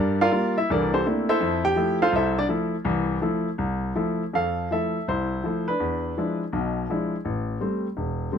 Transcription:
grand piano
Already playing: G2 D4 G4 A#4 D5
0.21 F4 A#4 D5 F5
0.32 G3 A#3 F4
0.58 E4 E5
0.70 C2 E3 D4 A4 A#4 D5
0.93 C4 G4 A4 C5
1.06 A3 A#3 C4 D4 E4
1.29 E4 A4 C5 E5
1.40 F2
1.65 G4 G5
1.76 F3 A3 E4
2.02 F4 A4 C5 F5
2.12 C2 E5
2.16 E4 A4 C5
2.39 D4 D5
2.49 F3 A3 E4
2.85 C2 E3
3.22 F3 A3 E4
3.58 C2
3.96 F3 A3 E4
4.33 F2 A4 F5
4.71 F3 A3 E4 A4 E5
5.08 C2 E4 C5
5.44 F3 A3 E4
5.68 D4 B4
5.80 E2
6.17 F3 G#3 D4 E4
6.53 B1 B2
6.90 F3 G#3 D4 E4
7.25 A1
7.61 G3 A3 C4
7.97 E1
8.32 G3 A3 C4

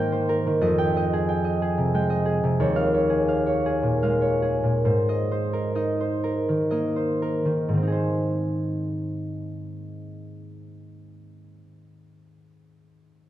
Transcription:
harp
Already playing: G#2 D#3 G#3 A#3 G#4 A#4 C5 G5
0.12 C5
0.29 A#4
0.47 D#3
0.61 F2 D#5
0.78 G5
0.96 D#5
1.13 G#4
1.29 G5
1.44 D#5
1.62 G#4
1.78 C3
1.94 G#3 G5
2.10 D#5
2.26 G#4
2.44 C3
2.60 D#2 C#5
2.76 F5
2.94 C#5
3.10 G#4
3.28 F5
3.47 C#5
3.66 G#4
3.83 A#2
4.03 G#3 F5
4.22 C#5
4.42 G#4
4.64 A#2
4.85 G#2 C5
5.09 D#5
5.32 C5
5.53 A#4
5.75 D#4 D#5
6.01 C5
6.24 A#4
6.49 D#3
6.71 A#3 D#5
6.96 C5
7.22 A#4
7.45 D#3
7.68 G#2
7.73 D#3 C4
7.83 D#4
7.87 G#4
7.92 C5

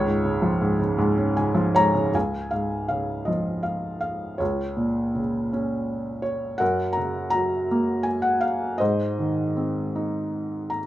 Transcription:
felt piano
Already playing: C#2 F4 C#5
0.06 G#2
0.25 C#3
0.42 F3
0.61 G#2
0.80 C#3
0.98 G#2
1.17 C#4
1.37 C#3 G#5
1.55 F3
1.75 G#2 C#5 A#5
1.94 C#3
2.13 C#2 F5 G#5
2.51 G#2 F5
2.88 C#3 F5
3.25 F3 D#5
3.63 F5
4.01 F5
4.38 C#2 F4 C#5
4.77 A#2
5.15 C#3
5.53 C#4
6.22 C#5
6.58 F#2 A#4 F#5
6.93 A#5
6.97 C#3
7.30 A#5
7.34 F#3
7.71 A#3
8.03 G#5
8.22 F#5
8.41 F5
8.78 G#2 C5 D#5
9.19 D#3
9.57 C4
9.95 D#4
10.70 A#5

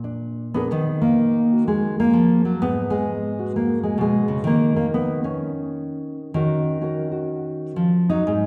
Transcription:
nylon-string guitar
Already playing: A#2
0.04 D4
0.54 B3 D4 G#4 A#4
0.71 D#3 B3
1.02 A#3
1.52 F#4
1.68 G#3
2.00 A#3
2.13 F3
2.45 F#3
2.62 G#2 B3
2.90 G#3
3.39 F#4
3.56 A#3
3.83 G#3
3.98 B2 G#3
4.28 C#3
4.44 D#3 A#3
4.76 A#3
4.94 B3
5.24 C#4
6.34 D#3 C#4 F#4 A#4
6.81 C#4 F#4 A#4
7.12 F#4
7.76 F3
8.10 F#3 D#4
8.27 G#2 G#3

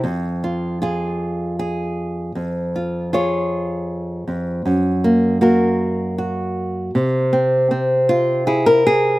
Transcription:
nylon-string guitar
0.04 F2
0.44 F4
0.82 F4 G#4
1.59 G#4
2.35 F2
2.76 F4
3.13 F4 G#4 C#5
4.28 F2
4.66 F#2
5.04 A#3
5.41 A#3 F#4 A#4
6.18 F#4
6.95 C3
7.33 C4
7.71 C4
8.09 F4
8.47 E4 G#4
8.66 A#4
8.87 G#4

